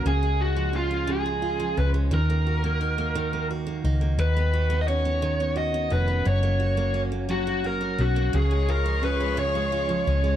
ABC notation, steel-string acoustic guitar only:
X:1
M:6/8
L:1/16
Q:3/8=58
K:C#mix
V:1 name="Steel-string acoustic guitar"
C, G,2 E, C G, C, G, E E, C G, | D, A, F A, D A, D, A, F A, D A, | D, B, F B, C B, D, B, F B, C B, | F, A, F A, C A, F, A, F A, C A, |
C, G, E E, C G, C, G, E E, C G, |]